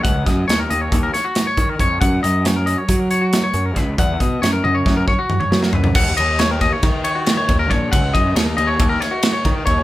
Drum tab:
CC |------------------|------------------|------------------|x-----------------|
RD |------------------|------------------|------------------|--x-x-x-x-x-x-x-x-|
HH |x-x-x-x-x-x-x-x-x-|x-x-x-x-x-x-x-x-x-|x-x-x-------------|------------------|
SD |--o-o-----o-o-----|----o-------o---o-|----o---o-----oo--|----o-o-o---o-----|
T1 |------------------|------------------|------o-----------|------------------|
T2 |------------------|------------------|------------oo----|------------------|
FT |------------------|------------------|----------------oo|------------------|
BD |o-o-----o-----o-o-|o-------o-------o-|o-o-----o-o-------|o-----o-o-----o-o-|

CC |------------------|
RD |x-x-x-x-x-x-x-x-x-|
HH |------------------|
SD |----o-----o-o-----|
T1 |------------------|
T2 |------------------|
FT |------------------|
BD |o-o-----o-----o-o-|